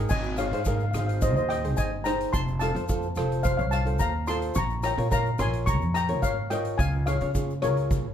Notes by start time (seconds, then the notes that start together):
Already playing: G#3 G#4 A#4 G5
0.09 G#1 D#5 G#5, kick, crash, shaker
0.23 shaker
0.37 D#4 G#4 C5 C#5 F5, cross-stick, closed hi-hat, shaker
0.45 F5
0.51 G#2 D#4 G#4 C5 F5, closed hi-hat
0.60 F5
0.65 D#4 G#4 A#4 F5, kick, closed hi-hat, shaker
0.76 F5
0.80 F5, shaker
0.91 G#1 D#4 F5, cross-stick, closed hi-hat, shaker
0.95 G#4 C5 F5
1.07 F5, closed hi-hat
1.21 C5 D#5, kick, closed hi-hat, shaker
1.36 D#2 C5 D#5, shaker
1.49 D#5 G5, cross-stick, closed hi-hat
1.64 D#4 G#4 C5, closed hi-hat
1.77 G1 D#5 G#5, kick, closed hi-hat, shaker
2.04 D#4 G#4 C5 G5 A#5, cross-stick, closed hi-hat, shaker
2.21 closed hi-hat
2.33 F1 A5 C6, kick, closed hi-hat, shaker
2.48 shaker
2.59 F4 A4 C5 F5 A5, cross-stick, closed hi-hat, shaker
2.75 F2 F4 A4 C5, closed hi-hat
2.89 F4 A4 C5, kick, closed hi-hat, shaker
3.02 shaker
3.16 F1 F4 A4 C5, cross-stick, closed hi-hat, shaker
3.32 closed hi-hat
3.43 C5 F5, kick, closed hi-hat, shaker
3.57 C2 C#5 F5, shaker
3.71 F5 A5, cross-stick, closed hi-hat, shaker
3.85 F4 A4 C5, closed hi-hat
3.99 D#2 F5 A#5, kick, closed hi-hat, shaker
4.27 F4 A4 C5 A5 C6, cross-stick, closed hi-hat, shaker
4.42 closed hi-hat
4.55 A#1 A#5 C#6, kick, closed hi-hat, shaker
4.70 shaker
4.83 F4 A#4 C#5 G5 A#5, cross-stick, closed hi-hat, shaker
4.97 A#2 F4 A#4 C#5, closed hi-hat
5.10 F4 A#4 C#5 F5 A#5, kick, closed hi-hat, shaker
5.26 shaker
5.38 A#1 F4 A#4 C#5 G#5 C6, cross-stick, closed hi-hat, shaker
5.53 closed hi-hat
5.66 A#5 C#6, kick, closed hi-hat, shaker
5.81 F2, shaker
5.94 G5 A#5, cross-stick, closed hi-hat, shaker
6.08 F4 A#4 C#5, closed hi-hat
6.22 G#1 C#5 F5, kick, closed hi-hat, shaker
6.50 F4 A#4 C#5 D#5 G5, cross-stick, closed hi-hat, shaker
6.65 closed hi-hat
6.78 C#2 F5 G#5, kick, closed hi-hat, shaker
7.06 F4 G#4 C#5 F5, cross-stick, closed hi-hat, shaker
7.21 C#3 F4 G#4 C#5, closed hi-hat
7.34 F4 G#4 C#5, kick, closed hi-hat, shaker
7.50 shaker
7.62 C#2 F4 G#4 A#4 C#5, cross-stick, closed hi-hat, shaker
7.77 closed hi-hat, shaker
7.90 kick, closed hi-hat, shaker
8.05 G#1